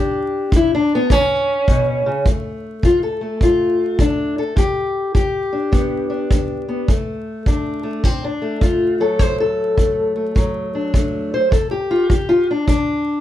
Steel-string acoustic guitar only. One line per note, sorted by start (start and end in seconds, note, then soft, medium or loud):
0.00 0.48 D2 medium
0.00 0.73 D4 medium
0.00 0.53 G4 medium
0.52 1.05 D3 medium
0.56 0.73 E4 loud
0.75 0.92 D4 medium
0.95 1.12 B3 loud
1.10 1.63 A2 medium
1.10 2.26 C#4 loud
1.69 2.05 B2 medium
2.06 2.26 C#3 medium
2.27 2.79 D2 medium
2.27 3.20 A3 soft
2.83 3.37 D3 medium
2.83 3.03 F4 medium
3.03 3.41 A4 medium
3.21 4.57 A3 soft
3.41 3.94 A2 medium
3.41 3.99 F4 medium
4.00 4.53 D3 medium
4.00 4.38 D4 medium
4.39 4.57 A4 medium
4.56 5.10 G2 medium
4.56 5.14 G4 medium
5.14 5.68 D3 medium
5.14 6.88 G4 loud
5.53 6.09 D4 soft
5.72 6.26 D3 medium
5.72 6.67 B3 medium
6.10 6.31 D4 soft
6.31 6.84 D3 medium
6.31 6.89 D4 soft
6.69 6.86 B3 soft
6.88 7.42 D2 medium
6.88 7.83 A3 soft
7.46 8.00 D3 medium
7.46 8.24 D4 soft
7.83 8.05 A3 soft
8.04 8.58 A2 medium
8.04 8.24 C4 medium
8.24 8.62 D4 medium
8.42 9.77 A3 soft
8.62 9.16 D3 medium
8.62 9.00 F4 medium
9.00 10.35 F#3 soft
9.00 9.19 A4 medium
9.19 9.74 D2 medium
9.19 9.39 C5 medium
9.40 10.74 A4 medium
9.78 10.32 D3 medium
9.78 10.15 A3 soft
10.16 10.93 A3 soft
10.36 10.90 A2 medium
10.36 11.52 F#3 medium
10.75 11.33 D4 soft
10.94 11.48 D3 medium
10.94 11.52 A3 soft
11.34 11.52 C5 medium
11.51 12.05 G2 medium
11.51 11.71 A4 medium
11.71 12.09 G4 medium
11.91 12.10 F4 medium
12.10 12.64 D3 medium
12.10 12.48 G4 medium
12.29 12.48 F4 medium
12.51 12.67 D4 medium
12.67 13.21 D3 medium
12.67 13.21 D4 medium